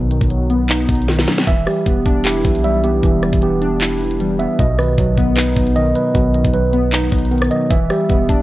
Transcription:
Already playing: 808-style bass B1, synth keys B2 D#3 F#3 B3 D#4
0.11 synth keys D#3, closed hi-hat
0.21 808-style bass B1, kick
0.30 synth keys F#3, closed hi-hat
0.50 synth keys B3, closed hi-hat
0.69 synth keys D#4, clap, closed hi-hat
0.89 808-style bass B1, kick, closed hi-hat
0.95 closed hi-hat
1.02 closed hi-hat
1.08 synth keys D#3, snare, closed hi-hat
1.15 snare, closed hi-hat
1.21 closed hi-hat
1.28 synth keys F#3, snare, closed hi-hat
1.38 snare
1.47 808-style bass E1, synth keys E3, tine electric piano E5, kick, closed hi-hat
1.67 synth keys G3, tine electric piano G4, cross-stick, open hi-hat
1.86 808-style bass E1, synth keys B3, kick, closed hi-hat
2.05 808-style bass E1, synth keys D4, kick, closed hi-hat
2.25 synth keys E4, tine electric piano G4, clap, closed hi-hat
2.45 808-style bass B1, tine electric piano E3, kick, closed hi-hat
2.55 closed hi-hat
2.64 synth keys G3, tine electric piano E5, closed hi-hat
2.83 synth keys B3, tine electric piano G4, closed hi-hat
3.03 808-style bass E1, tine electric piano E3, synth keys E3, kick, closed hi-hat
3.23 synth keys G3, cross-stick, closed hi-hat
3.33 808-style bass E1, kick
3.42 synth keys B3, tine electric piano G4, closed hi-hat
3.61 synth keys D4, closed hi-hat
3.81 synth keys E4, clap, closed hi-hat
4.01 closed hi-hat
4.11 closed hi-hat
4.20 tine electric piano E3, synth keys G3, closed hi-hat
4.39 synth keys B3, tine electric piano E5, closed hi-hat
4.59 808-style bass B1, synth keys B2, tine electric piano D#5, kick, closed hi-hat
4.79 synth keys D#3, tine electric piano B4, cross-stick, open hi-hat
4.98 808-style bass B1, synth keys F#3, kick, closed hi-hat
5.17 808-style bass B1, synth keys B3, kick, closed hi-hat
5.36 synth keys D#4, tine electric piano B4, clap, closed hi-hat
5.55 808-style bass B1, tine electric piano B3, kick, closed hi-hat
5.67 closed hi-hat
5.76 synth keys D#3, tine electric piano D#5, closed hi-hat
5.95 synth keys F#3, tine electric piano B4, closed hi-hat
6.14 808-style bass B1, synth keys B2, tine electric piano B3, kick, closed hi-hat
6.34 synth keys D#3, closed hi-hat
6.45 808-style bass B1, kick
6.54 synth keys F#3, tine electric piano B4, closed hi-hat
6.73 synth keys B3, closed hi-hat
6.92 synth keys D#4, clap, closed hi-hat
7.12 808-style bass B1, kick, closed hi-hat
7.19 closed hi-hat
7.25 closed hi-hat
7.31 synth keys D#3, tine electric piano B3, closed hi-hat
7.38 cross-stick, closed hi-hat
7.45 closed hi-hat
7.51 synth keys F#3, tine electric piano D#5, closed hi-hat
7.71 808-style bass E1, synth keys E3, tine electric piano E5, kick, closed hi-hat
7.90 synth keys G3, tine electric piano G4, cross-stick, open hi-hat
8.09 808-style bass E1, synth keys B3, kick, closed hi-hat
8.29 808-style bass E1, synth keys D4, kick, closed hi-hat

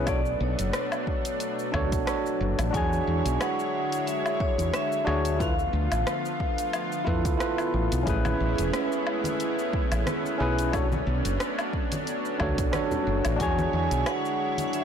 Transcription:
Already playing: fretless electric bass B1, analog synth pad B2 B3
0.05 analog synth pad F#3 A3 D4, tine electric piano D4 F#4 A4 C#5, vibraphone D5, kick, closed hi-hat, cabasa, low woodblock
0.26 cabasa
0.40 fretless electric bass B1, vibraphone C#5
0.59 fretless electric bass F#1, closed hi-hat, cabasa
0.73 cross-stick, closed hi-hat, cabasa
0.92 cabasa, low woodblock
1.07 kick
1.25 closed hi-hat, cabasa
1.40 closed hi-hat, cabasa
1.59 cabasa
1.72 fretless electric bass D2, tine electric piano D4 F#4 A4 C#5, kick, low woodblock
1.92 fretless electric bass B1, kick, closed hi-hat, cabasa
2.05 tine electric piano D4 F#4 A4 C#5, cross-stick, closed hi-hat, cabasa
2.26 cabasa
2.41 fretless electric bass F#1
2.59 fretless electric bass A1, closed hi-hat, cabasa, low woodblock
2.70 fretless electric bass E2, analog synth pad D3 G#3 E4 C#5, tine electric piano D4 F#4, kick, closed hi-hat
2.75 tine electric piano G#4 C#5, vibraphone G#5, cabasa
2.93 cabasa
3.07 fretless electric bass E2
3.25 fretless electric bass B1, closed hi-hat, cabasa
3.41 vibraphone F#5, cross-stick, closed hi-hat, cabasa, low woodblock
3.59 cabasa
3.92 closed hi-hat, cabasa
4.07 vibraphone E5, closed hi-hat, cabasa
4.26 cabasa, low woodblock
4.40 vibraphone C#5, kick
4.58 fretless electric bass E2, closed hi-hat, cabasa
4.74 vibraphone E5, cross-stick, closed hi-hat, cabasa
4.92 cabasa
5.05 fretless electric bass D2, tine electric piano D4 F#4 G#4 C#5, low woodblock
5.25 vibraphone E5, closed hi-hat, cabasa
5.38 analog synth pad F3 A3 B3 F4, tine electric piano E4 F4 A4 B4, vibraphone F5, kick, closed hi-hat, cabasa
5.59 cabasa
5.73 fretless electric bass D2
5.92 fretless electric bass A1, closed hi-hat, cabasa, low woodblock
6.07 cross-stick, closed hi-hat, cabasa
6.25 cabasa
6.40 kick
6.58 closed hi-hat, cabasa
6.73 closed hi-hat, cabasa, low woodblock
6.92 cabasa
7.05 fretless electric bass F2, tine electric piano E4 F4 A4 B4, kick
7.25 fretless electric bass D2, kick, closed hi-hat, cabasa
7.37 tine electric piano E4 F4 A4 B4, cross-stick, closed hi-hat, cabasa
7.58 cabasa, low woodblock
7.74 fretless electric bass A1
7.92 fretless electric bass B1, closed hi-hat, cabasa
8.03 fretless electric bass A1, tine electric piano C#4 E4, kick, closed hi-hat
8.07 analog synth pad G#3 C#4 E4, tine electric piano G#4 B4, cabasa
8.25 high conga, cabasa, low woodblock
8.40 fretless electric bass A1
8.58 fretless electric bass E1, closed hi-hat, cabasa
8.73 cross-stick, closed hi-hat, cabasa
8.92 cabasa
9.07 low woodblock
9.24 closed hi-hat, high conga, cabasa
9.40 closed hi-hat, cabasa
9.59 cabasa
9.73 kick
9.92 fretless electric bass A1, closed hi-hat, cabasa, low woodblock
10.07 cross-stick, closed hi-hat, high conga, cabasa
10.26 cabasa
10.38 fretless electric bass B1, tine electric piano C#4 E4 G#4 B4
10.59 closed hi-hat, cabasa
10.72 analog synth pad F#3 D4, tine electric piano D4 F#4 A4 C#5, kick, closed hi-hat, cabasa, low woodblock
10.92 high conga, cabasa
11.07 fretless electric bass B1
11.25 fretless electric bass F#1, closed hi-hat, cabasa
11.40 cross-stick, closed hi-hat, cabasa
11.59 cabasa, low woodblock
11.73 kick
11.92 closed hi-hat, high conga, cabasa
12.07 closed hi-hat, cabasa
12.25 cabasa
12.39 fretless electric bass D2, tine electric piano D4 F#4 A4 C#5, kick, low woodblock
12.58 fretless electric bass B1, kick, closed hi-hat, cabasa
12.72 tine electric piano D4 F#4 A4 C#5, cross-stick, closed hi-hat, high conga, cabasa
12.91 low conga, cabasa
13.07 fretless electric bass F#1
13.25 fretless electric bass A1, closed hi-hat, cabasa, low woodblock
13.36 fretless electric bass E2, tine electric piano D4 F#4, analog synth pad E4 C#5, kick, closed hi-hat
13.40 analog synth pad D3 G#3, tine electric piano G#4 C#5, vibraphone G#5, cabasa
13.58 high conga, cabasa
13.73 fretless electric bass E2
13.91 fretless electric bass B1, closed hi-hat, cabasa
14.06 vibraphone F#5, cross-stick, closed hi-hat, cabasa, low woodblock
14.25 cabasa
14.58 closed hi-hat, high conga, cabasa
14.68 vibraphone F#5
14.73 vibraphone E5, closed hi-hat, cabasa

